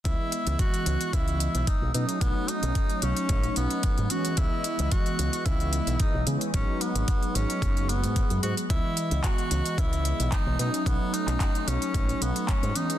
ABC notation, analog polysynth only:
X:1
M:4/4
L:1/16
Q:"Swing 16ths" 1/4=111
K:C#m
V:1 name="Analog polysynth"
[E,G,B,d]12- [E,G,B,d]2 [F,A,CD]2 | D12- D2 [E,G,B,C]2 | z12 z2 [E,G,B,C]2 | [F,G,]8- [F,G,]3 [F,G,B,G]4- [F,G,B,G] |
[E,G,B,]12- [E,G,B,]2 [F,A,CD]2 | [F,A,]12- [F,A,]2 [E,G,B,C]2 |]